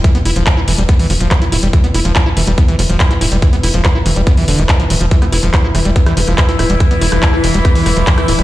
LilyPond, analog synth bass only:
\new Staff \with { instrumentName = "Analog synth bass" } { \clef bass \time 4/4 \key c \major \tempo 4 = 142 r8 e,,16 e,,16 r8 e,,16 e,,16 r8 e,,16 e,,16 r8 d,,16 e,,16 | r8 e,,16 e,,16 r8 e,,16 e,,16 r8 e,,16 e,,16 r8 d,,16 e,,16 | r8 e,,16 e,,16 r8 e,,16 e,,16 r8 e,,16 e,,16 r8 d,,16 e,,16 | r8 e,,16 e,,16 r8 e,,16 e,,16 r8 e,,16 e,,16 r8 d,,16 e,,16 |
r8 e,,16 e,,16 r8 e,,16 e,,16 r8 e,,16 e,,16 r8 d,,16 e,,16 | }